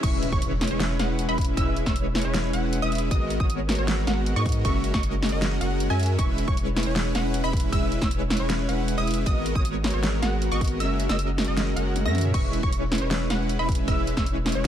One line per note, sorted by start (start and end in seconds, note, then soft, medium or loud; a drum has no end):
0.03 0.30 E1 medium
0.03 0.30 G#3 medium
0.03 0.30 C#4 medium
0.03 0.30 E4 medium
0.03 0.30 B4 medium
0.03 0.30 E5 medium
0.03 0.20 C#6 loud
0.03 kick loud
0.03 closed hi-hat medium
0.03 crash loud
0.03 impact medium
0.23 closed hi-hat medium
0.32 0.69 E1 medium
0.32 0.69 G#3 medium
0.32 0.69 C#4 medium
0.32 0.69 E4 medium
0.32 0.69 B4 medium
0.32 0.68 C#5 loud
0.32 0.69 C#5 loud
0.32 0.49 C#6 loud
0.32 kick loud
0.42 closed hi-hat medium
0.61 snare medium
0.61 closed hi-hat soft
0.64 closed hi-hat medium
0.67 0.98 E1 loud
0.67 0.97 G#3 medium
0.67 0.97 C#4 medium
0.67 0.97 E4 medium
0.67 0.97 B4 medium
0.67 0.97 C#5 medium
0.67 closed hi-hat medium
0.80 snare loud
0.80 closed hi-hat medium
0.99 1.27 E1 loud
0.99 1.26 G#3 medium
0.99 1.26 C#4 medium
0.99 1.26 E4 medium
0.99 1.26 B4 medium
0.99 1.26 F#5 medium
0.99 snare medium
0.99 closed hi-hat medium
1.19 closed hi-hat medium
1.28 1.55 E1 loud
1.28 1.55 G#3 medium
1.28 1.55 C#4 medium
1.28 1.55 E4 medium
1.28 1.55 B4 medium
1.28 1.55 E5 medium
1.28 1.55 E5 loud
1.28 1.45 B5 loud
1.38 kick loud
1.38 closed hi-hat medium
1.41 closed hi-hat medium
1.45 closed hi-hat medium
1.57 1.84 E1 medium
1.57 1.84 G#3 medium
1.57 1.84 C#4 medium
1.57 1.84 E4 medium
1.57 1.84 B4 medium
1.57 1.84 E5 medium
1.57 1.74 E6 loud
1.57 kick loud
1.57 closed hi-hat medium
1.77 closed hi-hat medium
1.86 2.23 E1 loud
1.86 2.22 G#3 loud
1.86 2.22 C#4 medium
1.86 2.22 E4 medium
1.86 2.22 B4 medium
1.86 2.22 C#5 loud
1.86 2.03 E6 medium
1.86 kick loud
1.86 snare medium
1.96 closed hi-hat medium
2.15 snare medium
2.15 closed hi-hat soft
2.18 closed hi-hat medium
2.22 2.51 E1 loud
2.22 2.51 G#3 medium
2.22 2.51 C#4 medium
2.22 2.51 E4 medium
2.22 2.51 B4 medium
2.22 2.51 C#5 medium
2.22 closed hi-hat medium
2.34 snare loud
2.34 closed hi-hat medium
2.53 2.80 E1 loud
2.53 2.80 G#3 medium
2.53 2.80 C#4 medium
2.53 2.80 E4 medium
2.53 2.80 B4 medium
2.53 2.80 F#5 medium
2.53 closed hi-hat medium
2.73 closed hi-hat medium
2.82 3.09 E1 medium
2.82 3.09 G#3 medium
2.82 3.09 C#4 medium
2.82 3.09 E4 medium
2.82 3.09 B4 medium
2.82 3.09 E5 medium
2.82 3.09 E5 loud
2.82 2.99 D#6 loud
2.92 closed hi-hat soft
2.95 closed hi-hat medium
2.98 closed hi-hat medium
3.11 3.38 G#1 medium
3.11 3.38 G#3 medium
3.11 3.38 B3 medium
3.11 3.38 F#4 medium
3.11 3.38 A#4 medium
3.11 3.38 D#5 medium
3.11 3.27 D#6 loud
3.11 kick loud
3.11 closed hi-hat medium
3.30 closed hi-hat medium
3.40 3.77 G#1 medium
3.40 3.76 G#3 loud
3.40 3.76 B3 medium
3.40 3.76 F#4 medium
3.40 3.76 A#4 medium
3.40 3.76 C#5 loud
3.40 3.56 D#6 medium
3.40 kick loud
3.50 closed hi-hat medium
3.69 snare medium
3.69 closed hi-hat soft
3.72 closed hi-hat medium
3.75 4.05 G#1 medium
3.75 4.05 G#3 medium
3.75 4.05 B3 medium
3.75 4.05 F#4 medium
3.75 4.05 A#4 medium
3.75 4.05 C#5 medium
3.75 closed hi-hat medium
3.88 snare loud
3.88 closed hi-hat medium
4.07 4.34 G#1 loud
4.07 4.34 G#3 medium
4.07 4.34 B3 medium
4.07 4.34 F#4 medium
4.07 4.34 A#4 medium
4.07 4.34 F#5 medium
4.07 snare medium
4.07 closed hi-hat medium
4.26 closed hi-hat medium
4.36 4.63 G#2 loud
4.36 4.63 G#3 medium
4.36 4.63 B3 medium
4.36 4.63 F#4 medium
4.36 4.63 A#4 medium
4.36 4.63 D#5 loud
4.36 4.53 C#6 medium
4.46 kick loud
4.46 closed hi-hat soft
4.49 closed hi-hat medium
4.52 closed hi-hat medium
4.65 4.92 F#1 loud
4.65 4.92 G#3 medium
4.65 4.92 C#4 medium
4.65 4.92 F#4 medium
4.65 4.92 A#4 medium
4.65 4.92 E5 medium
4.65 4.81 C#6 loud
4.65 kick loud
4.65 closed hi-hat medium
4.84 closed hi-hat medium
4.94 5.30 F#1 medium
4.94 5.30 G#3 medium
4.94 5.30 C#4 medium
4.94 5.30 F#4 medium
4.94 5.30 A#4 medium
4.94 5.30 D#5 loud
4.94 5.10 C#6 medium
4.94 kick loud
4.94 snare medium
5.03 closed hi-hat medium
5.23 snare medium
5.23 closed hi-hat soft
5.26 closed hi-hat medium
5.29 5.59 F#1 loud
5.29 5.59 G#3 medium
5.29 5.59 C#4 medium
5.29 5.59 F#4 medium
5.29 5.59 A#4 medium
5.29 5.59 D#5 medium
5.29 closed hi-hat medium
5.42 snare loud
5.42 closed hi-hat medium
5.61 5.88 F#1 loud
5.61 5.88 G#3 medium
5.61 5.88 C#4 medium
5.61 5.88 F#4 medium
5.61 5.88 A#4 medium
5.61 5.88 F#5 medium
5.61 closed hi-hat medium
5.80 closed hi-hat medium
5.90 6.17 F#2 loud
5.90 6.16 G#3 medium
5.90 6.16 C#4 medium
5.90 6.16 F#4 medium
5.90 6.16 A#4 medium
5.90 6.16 E5 medium
5.90 6.16 E5 loud
5.90 6.06 G#5 loud
6.00 closed hi-hat soft
6.03 closed hi-hat medium
6.06 closed hi-hat medium
6.18 6.46 E1 medium
6.18 6.46 G#3 medium
6.18 6.46 C#4 medium
6.18 6.46 E4 medium
6.18 6.46 B4 medium
6.18 6.45 E5 medium
6.18 6.46 E5 medium
6.18 6.35 C#6 loud
6.18 kick loud
6.18 closed hi-hat medium
6.38 closed hi-hat medium
6.48 6.84 E1 medium
6.48 6.84 G#3 loud
6.48 6.84 C#4 medium
6.48 6.84 E4 medium
6.48 6.84 B4 medium
6.48 6.84 C#5 loud
6.48 6.64 C#6 medium
6.48 kick loud
6.57 closed hi-hat medium
6.77 snare medium
6.77 closed hi-hat soft
6.80 closed hi-hat medium
6.83 7.13 E1 loud
6.83 7.13 G#3 medium
6.83 7.13 C#4 medium
6.83 7.13 E4 medium
6.83 7.13 B4 medium
6.83 7.13 C#5 medium
6.83 closed hi-hat medium
6.96 snare loud
6.96 closed hi-hat medium
7.15 7.42 E1 loud
7.15 7.42 G#3 medium
7.15 7.42 C#4 medium
7.15 7.42 E4 medium
7.15 7.42 B4 medium
7.15 7.42 F#5 medium
7.15 snare medium
7.15 closed hi-hat medium
7.34 closed hi-hat medium
7.44 7.71 E1 loud
7.44 7.70 G#3 medium
7.44 7.70 C#4 medium
7.44 7.70 E4 medium
7.44 7.70 B4 medium
7.44 7.70 E5 loud
7.44 7.70 E5 medium
7.44 7.60 B5 medium
7.53 kick loud
7.53 closed hi-hat soft
7.57 closed hi-hat medium
7.60 closed hi-hat medium
7.72 8.00 E1 medium
7.72 7.99 G#3 medium
7.72 7.99 C#4 medium
7.72 7.99 E4 medium
7.72 7.99 B4 medium
7.72 7.99 E5 medium
7.72 7.89 E6 loud
7.72 kick loud
7.72 closed hi-hat medium
7.92 closed hi-hat medium
8.01 8.38 E1 loud
8.01 8.38 G#3 loud
8.01 8.38 C#4 medium
8.01 8.38 E4 medium
8.01 8.38 B4 medium
8.01 8.38 C#5 loud
8.01 8.18 E6 medium
8.01 kick loud
8.01 snare medium
8.11 closed hi-hat medium
8.30 snare medium
8.30 closed hi-hat medium
8.34 closed hi-hat medium
8.37 8.67 E1 medium
8.37 8.66 G#3 medium
8.37 8.66 C#4 medium
8.37 8.66 E4 medium
8.37 8.67 B4 medium
8.37 8.66 C#5 medium
8.37 closed hi-hat medium
8.50 snare loud
8.50 closed hi-hat medium
8.69 8.96 E1 loud
8.69 8.95 G#3 medium
8.69 8.95 C#4 medium
8.69 8.95 E4 medium
8.69 8.95 B4 medium
8.69 8.95 F#5 medium
8.69 closed hi-hat medium
8.88 closed hi-hat medium
8.98 9.24 E1 loud
8.98 9.24 G#3 medium
8.98 9.24 C#4 medium
8.98 9.24 E4 medium
8.98 9.24 B4 medium
8.98 9.24 E5 medium
8.98 9.14 D#6 medium
9.07 closed hi-hat soft
9.11 closed hi-hat medium
9.14 closed hi-hat medium
9.26 9.54 G#1 loud
9.26 9.53 G#3 medium
9.26 9.53 B3 medium
9.26 9.53 F#4 medium
9.26 9.53 A#4 medium
9.26 9.53 D#5 medium
9.26 9.43 D#6 loud
9.26 kick loud
9.26 closed hi-hat medium
9.46 closed hi-hat medium
9.55 9.92 G#1 medium
9.55 9.92 G#3 medium
9.55 9.92 B3 medium
9.55 9.92 F#4 medium
9.55 9.92 A#4 medium
9.55 9.91 C#5 loud
9.55 9.92 C#5 loud
9.55 9.72 D#6 loud
9.55 kick loud
9.65 closed hi-hat medium
9.84 snare medium
9.84 closed hi-hat soft
9.87 closed hi-hat medium
9.90 10.21 G#1 loud
9.90 10.20 G#3 medium
9.90 10.20 B3 medium
9.90 10.20 F#4 medium
9.90 10.20 A#4 medium
9.90 10.20 C#5 medium
9.90 closed hi-hat medium
10.03 snare loud
10.03 closed hi-hat medium
10.22 10.50 G#1 loud
10.22 10.49 G#3 medium
10.22 10.49 B3 medium
10.22 10.49 F#4 medium
10.22 10.49 A#4 medium
10.22 10.49 F#5 medium
10.22 snare medium
10.22 closed hi-hat medium
10.42 closed hi-hat medium
10.52 10.82 G#1 loud
10.52 10.78 G#3 medium
10.52 10.78 B3 medium
10.52 10.78 F#4 medium
10.52 10.78 A#4 medium
10.52 10.78 D#5 loud
10.52 10.68 C#6 loud
10.61 kick loud
10.61 closed hi-hat medium
10.64 closed hi-hat medium
10.68 closed hi-hat medium
10.80 11.07 F#1 medium
10.80 11.07 G#3 medium
10.80 11.07 C#4 medium
10.80 11.07 F#4 medium
10.80 11.07 A#4 medium
10.80 11.07 E5 medium
10.80 10.97 E6 loud
10.80 closed hi-hat medium
11.00 closed hi-hat medium
11.09 11.46 F#1 medium
11.09 11.46 G#3 medium
11.09 11.45 C#4 medium
11.09 11.45 F#4 medium
11.09 11.45 A#4 medium
11.09 11.45 D#5 loud
11.09 11.46 D#5 loud
11.09 11.26 E6 loud
11.09 snare medium
11.19 closed hi-hat medium
11.38 snare medium
11.38 closed hi-hat medium
11.41 closed hi-hat medium
11.45 11.75 F#1 loud
11.45 11.74 G#3 medium
11.45 11.74 C#4 medium
11.45 11.74 F#4 medium
11.45 11.74 A#4 medium
11.45 11.74 D#5 medium
11.45 closed hi-hat medium
11.57 snare loud
11.57 closed hi-hat medium
11.76 12.07 F#1 loud
11.76 12.03 G#3 medium
11.76 12.03 C#4 medium
11.76 12.03 F#4 medium
11.76 12.03 A#4 medium
11.76 12.03 F#5 medium
11.76 closed hi-hat medium
11.96 closed hi-hat medium
11.96 high tom medium
12.05 12.32 F#2 loud
12.05 12.32 G#3 medium
12.05 12.32 C#4 medium
12.05 12.32 F#4 medium
12.05 12.32 A#4 medium
12.05 12.32 E5 loud
12.05 12.32 E5 medium
12.05 12.22 A#6 loud
12.05 high tom medium
12.15 closed hi-hat medium
12.15 mid tom medium
12.18 closed hi-hat medium
12.21 closed hi-hat medium
12.21 mid tom medium
12.34 12.61 E1 medium
12.34 12.61 G#3 medium
12.34 12.61 C#4 medium
12.34 12.61 E4 medium
12.34 12.61 B4 medium
12.34 12.61 E5 medium
12.34 12.51 C#6 loud
12.34 kick loud
12.34 closed hi-hat medium
12.34 crash medium
12.53 closed hi-hat medium
12.63 13.00 E1 loud
12.63 12.99 G#3 medium
12.63 12.99 C#4 medium
12.63 12.99 E4 medium
12.63 12.99 B4 medium
12.63 12.99 C#5 loud
12.63 12.80 C#6 medium
12.63 kick loud
12.72 closed hi-hat medium
12.92 snare medium
12.92 closed hi-hat medium
12.95 closed hi-hat medium
12.98 13.28 E1 loud
12.98 13.28 G#3 medium
12.98 13.28 C#4 medium
12.98 13.28 E4 medium
12.98 13.28 B4 medium
12.98 13.28 C#5 medium
12.98 closed hi-hat medium
13.11 snare loud
13.11 closed hi-hat medium
13.30 13.57 E1 loud
13.30 13.57 G#3 medium
13.30 13.57 C#4 medium
13.30 13.57 E4 medium
13.30 13.57 B4 medium
13.30 13.57 F#5 medium
13.30 snare medium
13.30 closed hi-hat medium
13.49 closed hi-hat medium
13.59 13.86 E1 medium
13.59 13.86 G#3 medium
13.59 13.86 C#4 medium
13.59 13.86 E4 medium
13.59 13.86 B4 medium
13.59 13.86 E5 loud
13.59 13.86 E5 medium
13.59 13.76 B5 medium
13.69 kick loud
13.69 closed hi-hat medium
13.72 closed hi-hat medium
13.75 closed hi-hat medium
13.88 14.15 E1 medium
13.88 14.15 G#3 medium
13.88 14.15 C#4 medium
13.88 14.15 E4 medium
13.88 14.15 B4 medium
13.88 14.15 E5 medium
13.88 14.04 E6 loud
13.88 kick loud
13.88 closed hi-hat medium
14.07 closed hi-hat medium
14.17 14.54 E1 medium
14.17 14.53 G#3 medium
14.17 14.53 C#4 medium
14.17 14.53 E4 medium
14.17 14.53 B4 medium
14.17 14.53 C#5 loud
14.17 14.33 E6 medium
14.17 kick loud
14.17 snare medium
14.26 closed hi-hat medium
14.46 snare medium
14.46 closed hi-hat soft
14.49 closed hi-hat medium
14.52 14.67 E1 loud
14.52 14.67 G#3 medium
14.52 14.67 C#4 medium
14.52 14.67 E4 medium
14.52 14.67 B4 medium
14.52 14.67 C#5 medium
14.52 closed hi-hat medium